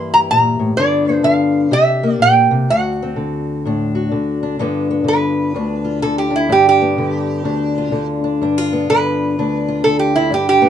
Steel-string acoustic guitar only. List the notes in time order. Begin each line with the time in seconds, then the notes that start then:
Already playing: G2 E3 A#3 E4 G4
0.14 G4
0.31 A#2
0.59 A2
0.77 G2 D3 B3 D4 F4
1.09 B3
1.23 D3
1.71 C3 G4
2.03 A#3
2.19 A#2
2.51 C3
2.70 D2 F#4
3.03 C4
3.16 D3
3.65 A2 D4
3.95 F#4
4.12 D3
4.43 D4
4.59 G2 D3 B3 D4 F4
4.91 B3
5.04 D3
5.54 D2 D4
5.85 F4
6.03 D3
6.30 D4
6.49 G2 D4
6.81 B3
6.98 D3
7.44 D2 D4
7.78 F4
7.92 D3
8.24 D4
8.42 G2 D4
8.58 F4
8.73 B3
8.90 D3
9.39 D2 D4
9.68 F4
9.85 D3
10.17 D4
10.30 G2 D4
10.62 B3